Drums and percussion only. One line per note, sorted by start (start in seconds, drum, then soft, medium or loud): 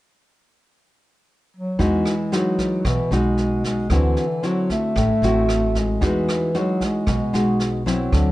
1.79 kick medium
1.79 snare soft
2.05 cross-stick medium
2.05 snare soft
2.32 snare soft
2.58 kick soft
2.58 snare soft
2.85 kick soft
2.85 cross-stick medium
2.85 snare soft
3.11 snare soft
3.37 snare soft
3.64 kick soft
3.64 snare soft
3.90 kick soft
3.90 cross-stick medium
3.90 snare soft
4.17 snare soft
4.43 snare soft
4.70 kick soft
4.70 snare soft
4.96 kick medium
4.96 cross-stick soft
4.96 snare soft
5.23 snare soft
5.49 cross-stick medium
5.49 snare soft
5.75 kick soft
5.75 snare soft
6.01 kick medium
6.01 snare soft
6.29 cross-stick medium
6.29 snare soft
6.54 snare soft
6.81 kick soft
6.81 snare soft
7.07 kick soft
7.07 cross-stick soft
7.07 snare soft
7.34 snare soft
7.60 snare soft
7.86 kick soft
7.86 snare soft
8.13 kick medium
8.13 cross-stick medium
8.13 snare soft